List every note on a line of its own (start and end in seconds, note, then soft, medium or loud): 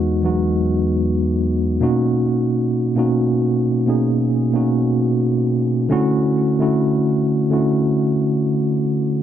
0.00 0.23 E2 loud
0.00 0.30 G#3 loud
0.00 0.24 B3 loud
0.00 0.25 D#4 loud
0.00 0.26 F#4 loud
0.23 1.69 E2 medium
0.23 0.30 F#3 medium
0.23 1.70 B3 medium
0.23 1.70 D#4 medium
0.23 1.70 F#4 medium
0.30 1.73 G#3 medium
1.80 2.72 B2 medium
1.80 2.73 A#3 medium
1.80 2.73 C#4 medium
1.80 2.73 D#4 medium
1.80 2.74 F#4 medium
2.96 3.68 B2 medium
2.96 3.68 A#3 medium
2.96 3.69 C#4 medium
2.96 3.69 D#4 medium
2.96 3.70 F#4 medium
3.86 4.41 B2 medium
3.86 4.42 A#3 medium
3.86 4.42 C#4 medium
3.86 4.42 D#4 medium
3.86 4.43 G#4 medium
4.53 5.65 B2 medium
4.53 5.65 A#3 medium
4.53 5.65 C#4 medium
4.53 5.66 D#4 medium
4.53 5.66 F#4 medium
5.89 6.45 D3 loud
5.89 6.46 A3 medium
5.89 6.46 C#4 loud
5.89 6.47 E4 loud
5.89 6.47 F#4 loud
6.59 7.31 D3 medium
6.59 7.32 A3 medium
6.59 7.32 C#4 medium
6.59 7.33 E4 medium
6.59 7.33 F#4 medium
7.50 8.96 D3 medium
7.50 8.97 A3 medium
7.50 8.97 C#4 medium
7.50 8.97 E4 medium
7.50 8.98 F#4 medium